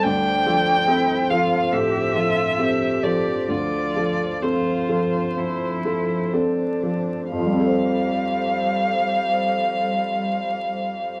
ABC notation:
X:1
M:4/4
L:1/8
Q:1/4=63
K:F
V:1 name="Violin"
g3 f e3 d | d2 c4 z2 | f8 |]
V:2 name="Ambient pad"
[F,Ac]8 | [F,Ac]8 | [G,Ac]8 |]
V:3 name="Cello"
D2 E F G F G2 | F2 F2 E2 D2 | G,8 |]
V:4 name="Felt piano"
D,, [F,A] [CA] [F,A] A,, [F,A] [CA] [F,A] | D,, [F,A] [CA] [F,A] F, [F,A] [CA] [F,A] | [F,,F,G,CAc]8 |]